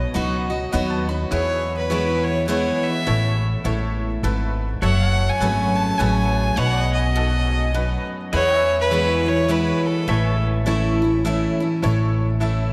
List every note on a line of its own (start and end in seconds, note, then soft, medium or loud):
0.00 0.68 B2 medium
0.14 0.65 C#2 medium
0.14 0.49 F#3 medium
0.14 0.49 B3 medium
0.14 0.55 D#4 medium
0.14 0.49 D#4 medium
0.14 0.56 F#4 medium
0.14 0.49 F#4 loud
0.14 0.56 B4 medium
0.50 0.73 D#4 soft
0.50 0.72 F#4 medium
0.50 0.71 D#5 medium
0.72 1.23 D#2 medium
0.72 1.07 F#3 medium
0.72 1.08 B3 loud
0.72 1.14 D#4 medium
0.72 1.08 D#4 medium
0.72 1.14 F#4 medium
0.72 1.08 F#4 medium
0.72 1.14 B4 medium
0.72 0.89 F#5 medium
0.90 1.07 A5 medium
1.09 1.32 D#4 soft
1.09 1.31 F#4 medium
1.09 1.30 B5 medium
1.31 2.44 E2 medium
1.31 2.69 E2 medium
1.31 1.72 E4 medium
1.31 1.72 G#4 medium
1.31 1.73 B4 medium
1.31 1.76 C#5 medium
1.78 2.26 B4 medium
1.90 2.46 E3 medium
1.90 2.47 G#3 medium
1.90 2.47 B3 medium
1.90 2.31 E4 medium
1.90 2.47 E4 medium
1.90 2.31 G#4 medium
1.90 2.31 C#5 medium
2.24 2.47 C#5 medium
2.48 3.04 E3 medium
2.48 3.05 G#3 medium
2.48 3.05 B3 medium
2.48 2.89 E4 medium
2.48 3.05 E4 medium
2.48 2.89 G#4 medium
2.48 2.90 B4 medium
2.48 2.85 C#5 medium
2.84 3.42 E5 loud
3.07 3.53 A1 medium
3.07 3.64 A2 medium
3.07 3.48 E4 medium
3.07 3.48 A4 medium
3.07 3.48 C#5 medium
3.64 4.15 A1 medium
3.64 4.21 A2 medium
3.64 4.06 E4 medium
3.64 4.06 A4 medium
3.64 4.06 C#5 medium
4.23 4.73 G#1 medium
4.23 4.80 G#2 medium
4.23 4.65 E4 medium
4.23 4.65 A4 medium
4.23 4.65 B4 medium
4.82 5.28 F#1 medium
4.82 5.95 F#2 medium
4.82 5.23 F#4 medium
4.82 5.23 A4 medium
4.82 6.56 C#5 medium
4.82 5.24 C#5 medium
4.82 5.09 E5 medium
4.82 5.31 F#5 loud
5.09 6.57 F#5 medium
5.29 5.78 G#5 loud
5.40 5.90 G#1 medium
5.40 5.97 F#3 medium
5.40 5.97 A3 medium
5.40 5.98 C#4 medium
5.40 5.82 F#4 medium
5.40 5.98 G#4 medium
5.40 5.82 A4 medium
5.40 5.82 B4 medium
5.76 6.00 A5 loud
5.98 6.49 A1 medium
5.98 6.55 F#3 medium
5.98 6.56 A3 medium
5.98 6.56 C#4 medium
5.98 6.40 F#4 medium
5.98 6.56 G#4 medium
5.98 6.40 A4 medium
5.98 6.40 B4 medium
5.98 6.59 G#5 medium
6.57 7.95 B1 medium
6.57 7.70 B2 medium
6.57 6.99 D#4 medium
6.57 6.99 F#4 medium
6.57 6.99 B4 medium
6.57 6.83 C#5 medium
6.57 6.93 F#5 loud
6.57 8.32 F#5 medium
6.83 8.31 D#5 medium
6.94 8.06 D#5 medium
7.16 7.72 G#2 medium
7.16 7.57 D#4 medium
7.16 7.57 F#4 medium
7.16 7.57 A4 medium
7.74 8.31 F#2 medium
7.74 8.15 D#4 medium
7.74 8.16 F#4 medium
7.74 8.16 B4 medium
8.33 9.45 E2 medium
8.33 9.70 E2 medium
8.33 8.74 E4 medium
8.33 8.74 G#4 medium
8.33 8.74 B4 medium
8.33 8.77 C#5 loud
8.33 8.53 D#5 medium
8.33 8.59 F#5 medium
8.53 10.06 E5 medium
8.59 10.07 G#5 medium
8.81 9.30 B4 loud
8.91 9.25 E3 medium
8.91 9.26 G#3 medium
8.91 9.26 B3 medium
8.91 9.32 E4 medium
8.91 9.25 E4 medium
8.91 9.32 G#4 medium
8.91 9.32 C#5 medium
9.26 9.49 B3 soft
9.26 9.48 E4 medium
9.26 9.53 C#5 medium
9.48 10.05 E3 medium
9.48 10.06 G#3 medium
9.48 10.06 B3 medium
9.48 9.90 E4 medium
9.48 10.06 E4 medium
9.48 9.91 G#4 medium
9.48 9.88 B4 medium
9.48 9.91 C#5 medium
9.86 10.44 A4 medium
10.08 11.45 A1 medium
10.08 11.20 A2 medium
10.08 10.49 E4 medium
10.08 10.49 A4 medium
10.08 10.50 C#5 medium
10.08 11.82 E5 medium
10.08 10.30 G#5 medium
10.30 11.83 A5 medium
10.66 11.00 E3 medium
10.66 11.01 A3 medium
10.66 11.01 C#4 medium
10.66 11.07 E4 medium
10.66 11.01 E4 medium
10.66 11.07 A4 medium
10.66 11.08 C#5 medium
11.02 11.25 C#4 soft
11.02 11.24 E4 medium
11.24 11.59 E3 medium
11.24 11.60 A3 medium
11.24 11.60 C#4 medium
11.24 11.66 E4 medium
11.24 11.59 E4 medium
11.24 11.66 A4 medium
11.24 11.66 E5 medium
11.60 11.83 C#4 soft
11.60 11.82 E4 medium
11.82 12.73 A1 medium
11.82 12.73 A2 medium
11.82 12.24 E4 medium
11.82 12.24 A4 medium
11.82 12.24 C#5 loud
12.40 12.73 E3 medium
12.40 12.73 A3 medium
12.40 12.73 C#4 medium
12.40 12.73 E4 medium
12.40 12.73 A4 medium
12.40 12.73 E5 medium